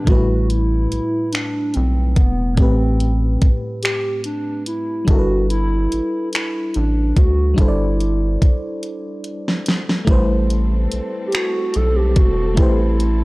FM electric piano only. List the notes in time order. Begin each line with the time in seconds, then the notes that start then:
0.04 A2 A3 B3
0.10 G3 B4
0.15 E4
2.54 A2 A3 C4
2.60 G4 B4
5.05 G3 D4 E4
5.10 A4 A#4
5.19 B4
7.54 G3 D4 E4
7.60 A4 C5
7.68 D5
10.05 G3 A3 E4
10.11 B4 C5
12.54 A3 E4
12.58 G4 B4
12.62 C5